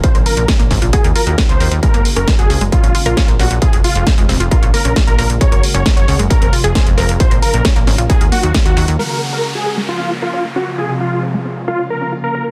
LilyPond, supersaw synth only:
\new Staff \with { instrumentName = "Supersaw synth" } { \time 4/4 \key bes \minor \tempo 4 = 134 c''16 r16 bes'8 r4 aes'16 r16 bes'8 r16 c''8 r16 | bes'8 r16 bes'16 r16 aes'8 r16 f'8 r16 f'8 r16 ges'16 r16 | aes'16 r16 f'8 r4 f'16 r16 bes'8 r16 bes'8 r16 | des''8 r16 des''16 r16 des''8 r16 bes'8 r16 aes'8 r16 bes'16 r16 |
c''16 r16 bes'8 r4 aes'16 r16 ges'8 r16 ges'8 r16 | bes'8 r16 bes'16 r16 aes'8 r16 f'8 r16 f'8 r16 ges'16 r16 | aes'16 r16 f'8 r4 f'16 r16 bes'8 r16 bes'8 r16 | }